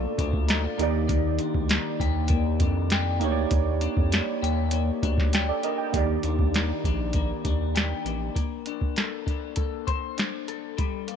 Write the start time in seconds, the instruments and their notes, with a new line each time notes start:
Already playing: clean electric guitar A#2 A3 D4 F4, synth keys A#3 F4 A4 D5
0.18 analog synth bass D2, clean electric guitar D4, kick, closed hi-hat
0.33 kick
0.48 clean electric guitar D#4, snare, closed hi-hat
0.64 clean electric guitar F4
0.78 analog synth bass D#2, clean electric guitar D#3, synth keys A#3 D#4 G4, closed hi-hat
0.83 synth keys D5
1.08 clean electric guitar D#3, kick, closed hi-hat
1.39 clean electric guitar D4, closed hi-hat
1.54 analog synth bass D2, kick
1.69 clean electric guitar A#3, snare, closed hi-hat
2.00 analog synth bass D#2, clean electric guitar G4, kick, closed hi-hat
2.28 clean electric guitar A#3, kick, closed hi-hat
2.60 analog synth bass F2, clean electric guitar D4, kick, closed hi-hat
2.90 clean electric guitar G4, snare, closed hi-hat
3.19 analog synth bass D2, synth keys A#3 D#4 G4, clean electric guitar D4, closed hi-hat
3.24 synth keys C#5
3.31 synth keys D5
3.51 analog synth bass D#2, kick, closed hi-hat
3.81 clean electric guitar D4, closed hi-hat
3.97 analog synth bass F2, kick
4.12 clean electric guitar A#3, snare, closed hi-hat
4.42 analog synth bass D#2, clean electric guitar G4, closed hi-hat
4.71 clean electric guitar A#3, closed hi-hat
5.03 analog synth bass D2, clean electric guitar D4, kick, closed hi-hat
5.18 kick, snare
5.33 clean electric guitar G4, snare, closed hi-hat
5.49 synth keys A4 D5
5.63 clean electric guitar D4, synth keys A#4 D#5, closed hi-hat
5.78 synth keys D5 G5
5.92 analog synth bass D#2, clean electric guitar D#3, synth keys A#3 D#4 G4, kick, closed hi-hat
5.97 synth keys D5
6.23 analog synth bass D#2, clean electric guitar D4, closed hi-hat
6.39 kick
6.54 clean electric guitar A#3, snare, closed hi-hat
6.84 analog synth bass A#1, clean electric guitar D4, kick, closed hi-hat
7.13 clean electric guitar A#3, kick, closed hi-hat
7.45 analog synth bass D#2, clean electric guitar D4, kick, closed hi-hat
7.75 clean electric guitar G4, snare, closed hi-hat
8.05 analog synth bass A1, clean electric guitar A#3, closed hi-hat
8.35 clean electric guitar A#3, kick, closed hi-hat
8.66 clean electric guitar D4, closed hi-hat
8.81 kick
8.96 clean electric guitar A4, snare, closed hi-hat
9.26 clean electric guitar D4, kick, closed hi-hat
9.56 clean electric guitar A4, kick, closed hi-hat
9.87 clean electric guitar C5, kick, closed hi-hat
10.18 clean electric guitar D4, snare, closed hi-hat
10.48 clean electric guitar A4, closed hi-hat
10.78 clean electric guitar G3, kick, closed hi-hat
11.08 clean electric guitar A#3, closed hi-hat